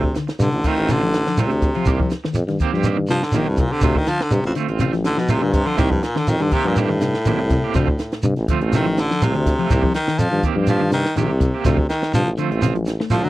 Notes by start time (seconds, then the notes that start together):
Already playing: C3
0.02 muted clean electric guitar stroke, kick
0.14 D3, muted clean electric guitar stroke, snare, closed hi-hat, shekere
0.27 muted clean electric guitar stroke, snare, closed hi-hat
0.39 G2 C3 D3, muted clean electric guitar stroke, closed hi-hat, shekere
0.52 A1, closed hi-hat
0.64 D#3 A3 C4 F4, kick, closed hi-hat, shekere
0.76 A1 C4 F4, closed hi-hat
0.89 C3 D3 C4 F4, muted clean electric guitar stroke, closed hi-hat, shekere
1.02 F3, closed hi-hat
1.13 muted clean electric guitar stroke, snare, closed hi-hat, shekere
1.27 F3, snare
1.37 C2 C3 A3 C4 F4, snare, closed hi-hat, shekere
1.50 D2 D3, muted clean electric guitar stroke, closed hi-hat
1.62 muted clean electric guitar stroke, kick, closed hi-hat, shekere
1.75 F3 C4 F4, closed hi-hat
1.85 C2 D#3 A#3 C4 G4, kick, closed hi-hat, shekere
2.00 F3, muted clean electric guitar stroke, kick
2.10 muted clean electric guitar stroke, snare, closed hi-hat, shekere
2.24 D#3, muted clean electric guitar stroke, snare
2.34 F2, muted clean electric guitar stroke, snare, closed hi-hat, shekere
2.47 G2 D#3, snare, closed hi-hat
2.59 D#3 A#3 C4 G4, kick, closed hi-hat, shekere
2.72 G2 F3 A#3 C4 G4, snare
2.83 D#3 A#3 C4 G4, closed hi-hat, shekere
2.97 D#3, muted clean electric guitar stroke
3.07 C3 F3, muted clean electric guitar stroke, snare, closed hi-hat, shekere
3.23 D3, snare
3.32 A#1 D#3 A#3 C4, closed hi-hat, shekere
3.36 D#3 G4
3.46 C2 G2, muted clean electric guitar stroke
3.57 A#2 C3, muted clean electric guitar stroke, kick, closed hi-hat, shekere
3.72 D3 C4 G4
3.81 D2 C3 A3 C4 F4, kick, closed hi-hat, shekere
3.95 D#3, muted clean electric guitar stroke, kick
4.06 D3 F3, muted clean electric guitar stroke, snare, closed hi-hat, shekere
4.20 D3, muted clean electric guitar stroke, snare, closed hi-hat
4.31 G2 C3, muted clean electric guitar stroke, closed hi-hat, shekere
4.43 A1 F2, snare, closed hi-hat
4.55 D3 A3 C4 F4, closed hi-hat, shekere
4.67 A1 C4, closed hi-hat
4.79 C3 A3 C4 F4, closed hi-hat, shekere
4.93 F3, muted clean electric guitar stroke, snare, closed hi-hat
5.04 D3, muted clean electric guitar stroke, snare, closed hi-hat, shekere
5.17 B2 F3, snare
5.28 C2 C3 A3 C4 F4, snare, closed hi-hat, shekere
5.42 G2 A#2 D3, muted clean electric guitar stroke, closed hi-hat
5.53 C3, muted clean electric guitar stroke, kick, closed hi-hat, shekere
5.66 D3 F3 C4 F4, closed hi-hat
5.77 C2 D#3 A#3 C4 G4, kick, closed hi-hat, shekere
5.90 G2 F3, muted clean electric guitar stroke, kick
6.03 A#2, muted clean electric guitar stroke, snare, closed hi-hat, shekere
6.15 D3 D#3, muted clean electric guitar stroke, snare
6.27 F2 D#3, muted clean electric guitar stroke, closed hi-hat, shekere
6.40 G2 D3 D#3, closed hi-hat
6.51 C3 D#3 A#3 C4 G4, kick, closed hi-hat, shekere
6.65 G2 A#2 F3 A#3 C4 G4
6.76 A2 D#3 A#3 C4 G4, closed hi-hat, shekere
6.89 D#3, muted clean electric guitar stroke, snare
7.01 C3, muted clean electric guitar stroke, snare, closed hi-hat, shekere
7.14 snare
7.25 A#1 D#3 A#3 C4 G4, snare, closed hi-hat, shekere
7.38 C2, muted clean electric guitar stroke
7.50 C3, muted clean electric guitar stroke, kick, snare, closed hi-hat, shekere
7.64 A#3 C4 G4
7.74 D2 C3 F3 A3 C4 F4, kick, closed hi-hat, shekere
7.88 muted clean electric guitar stroke, kick
7.99 muted clean electric guitar stroke, snare, closed hi-hat, shekere
8.12 muted clean electric guitar stroke, snare, closed hi-hat
8.23 G2 C3, muted clean electric guitar stroke, closed hi-hat, shekere
8.36 A1, snare, closed hi-hat
8.48 D3 F3 A3 C4 F4, kick, closed hi-hat, shekere
8.61 A1 A3 C4 F4, closed hi-hat
8.72 C3 D#3 F3 A3 C4 F4, closed hi-hat, shekere
8.85 F3, muted clean electric guitar stroke, closed hi-hat
8.97 D3, muted clean electric guitar stroke, snare, closed hi-hat, shekere
9.10 F3, snare
9.22 C2 C3 F3 A3 C4 F4, closed hi-hat, shekere
9.34 D2 D3, muted clean electric guitar stroke, closed hi-hat
9.46 muted clean electric guitar stroke, kick, snare, closed hi-hat, shekere
9.59 F3 A3 C4 F4, closed hi-hat
9.70 C2 D#3 A#3 C4 G4, kick, closed hi-hat, shekere
9.83 F3, muted clean electric guitar stroke, kick
9.94 D#3, muted clean electric guitar stroke, snare, closed hi-hat, shekere
10.07 D#3, muted clean electric guitar stroke, snare
10.19 F2 F3, muted clean electric guitar stroke, closed hi-hat, shekere
10.31 G2 D#3, closed hi-hat
10.43 D#3 A#3 C4 G4, kick, closed hi-hat, shekere
10.56 G2 F3 A#3 C4 G4
10.67 D#3 F3 A#3 C4 G4, closed hi-hat, shekere
10.80 D#3, muted clean electric guitar stroke
10.91 C3 D#3, muted clean electric guitar stroke, snare, closed hi-hat, shekere
11.05 snare
11.16 A#1 C3 D#3 A#3 G4, muted clean electric guitar stroke, closed hi-hat, shekere
11.30 C2, muted clean electric guitar stroke
11.40 C3, muted clean electric guitar stroke, kick, closed hi-hat, shekere
11.54 A#3 C4 G4
11.64 D2 C3 F3 A3 C4 F4, kick, snare, closed hi-hat, shekere
11.78 muted clean electric guitar stroke, kick
11.89 D#3, muted clean electric guitar stroke, snare, closed hi-hat, shekere
12.02 muted clean electric guitar stroke, snare, closed hi-hat
12.13 G2 C3 F3, muted clean electric guitar stroke, closed hi-hat, shekere
12.25 A1, closed hi-hat
12.38 D3 F3 A3 C4 F4, closed hi-hat, shekere
12.50 A1 A3 C4, closed hi-hat
12.62 C3 F3 C4 F4, muted clean electric guitar stroke, snare, closed hi-hat, shekere
12.75 F3, muted clean electric guitar stroke, closed hi-hat
12.85 muted clean electric guitar stroke, snare, closed hi-hat, shekere
13.00 A3, snare
13.10 C2 F3 A3 C4 F4, closed hi-hat, shekere
13.23 D2 D3 F#3, muted clean electric guitar stroke, closed hi-hat